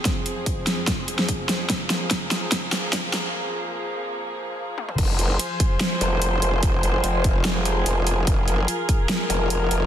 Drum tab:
CC |----------------|----------------|----------------|x---------------|
HH |x-x-x-x-x-x-x-x-|x-x-x-x-x-x-x-x-|----------------|x-x-x-x-x-x-x-x-|
SD |o-----o-o--o--o-|o-o-o-o-o-o-o-o-|----------------|--------o-------|
T1 |----------------|----------------|--------------o-|----------------|
T2 |----------------|----------------|---------------o|----------------|
BD |o---o---o---o---|o---o---o---o---|----------------|o-----o---------|

CC |----------------|----------------|
HH |x-x-x-x-x-x-x-x-|x-x-x-x-x-x-x-x-|
SD |--------o-------|--------o-------|
T1 |----------------|----------------|
T2 |----------------|----------------|
BD |o-----o---------|o-----o---------|